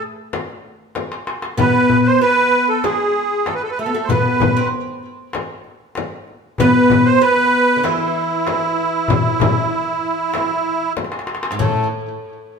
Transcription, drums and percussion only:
0.33 darbuka tek, frame drum
0.49 darbuka ka
0.95 darbuka tek, frame drum
1.12 darbuka ka
1.27 darbuka tek
1.42 darbuka ka
1.58 darbuka dum, frame drum
1.90 darbuka dum
2.37 darbuka ka
2.53 darbuka ka
2.84 darbuka tek, frame drum
3.15 darbuka ka
3.46 darbuka tek, frame drum
3.77 darbuka ka
4.09 darbuka dum, frame drum
4.40 darbuka dum, frame drum
4.71 darbuka ka
4.87 darbuka ka
5.03 darbuka ka
5.33 darbuka tek, frame drum
5.64 darbuka ka
5.95 darbuka tek, frame drum
6.28 darbuka ka
6.58 darbuka dum, frame drum
6.90 darbuka dum, frame drum
7.37 darbuka ka
7.52 darbuka ka
7.84 darbuka tek, frame drum
8.16 darbuka ka
8.47 darbuka tek, frame drum
8.78 darbuka ka
9.08 darbuka dum, frame drum
9.25 darbuka ka
9.40 darbuka dum, frame drum
9.71 darbuka ka
9.87 darbuka ka
10.02 darbuka ka
10.34 darbuka tek, frame drum
10.50 darbuka ka
10.65 darbuka ka
10.81 darbuka ka
10.97 darbuka tek, frame drum
11.04 darbuka ka
11.12 darbuka tek
11.19 darbuka ka
11.27 darbuka tek
11.35 darbuka ka
11.43 darbuka tek
11.51 darbuka ka
11.59 darbuka dum, frame drum

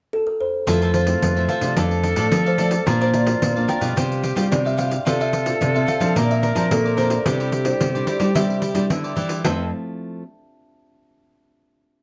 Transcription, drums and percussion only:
0.67 pandeiro
0.82 pandeiro
0.94 pandeiro
1.07 pandeiro
1.22 pandeiro
1.37 pandeiro
1.49 pandeiro
1.61 pandeiro
1.77 pandeiro
1.91 pandeiro
2.03 pandeiro
2.16 pandeiro
2.32 pandeiro
2.46 pandeiro
2.58 pandeiro
2.71 pandeiro
2.87 pandeiro
3.01 pandeiro
3.14 pandeiro
3.27 pandeiro
3.42 pandeiro
3.57 pandeiro
3.69 pandeiro
3.82 pandeiro
3.97 pandeiro
4.12 pandeiro
4.23 pandeiro
4.37 pandeiro
4.52 pandeiro
4.67 pandeiro
4.79 pandeiro
4.91 pandeiro
5.07 pandeiro
5.21 pandeiro
5.33 pandeiro
5.46 pandeiro
5.62 pandeiro
5.76 pandeiro
5.88 pandeiro
6.01 pandeiro
6.16 pandeiro
6.31 pandeiro
6.43 pandeiro
6.56 pandeiro
6.71 pandeiro
6.86 pandeiro
6.98 pandeiro
7.10 pandeiro
7.26 pandeiro
7.40 pandeiro
7.52 pandeiro
7.65 pandeiro
7.81 pandeiro
7.95 pandeiro
8.07 pandeiro
8.20 pandeiro
8.35 pandeiro
8.50 pandeiro
8.62 pandeiro
8.75 pandeiro
8.90 pandeiro
9.04 pandeiro
9.17 pandeiro
9.29 pandeiro
9.45 pandeiro

